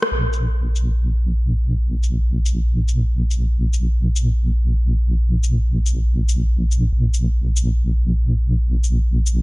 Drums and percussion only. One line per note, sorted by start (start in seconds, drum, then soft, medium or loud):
0.02 cross-stick medium
0.33 shaker soft
0.76 shaker medium
2.03 shaker soft
2.46 shaker medium
2.88 shaker medium
3.31 shaker soft
3.73 shaker medium
4.16 shaker medium
5.43 shaker medium
5.86 shaker medium
6.29 shaker medium
6.71 shaker medium
7.14 shaker medium
7.56 shaker medium
8.84 shaker soft
9.26 shaker medium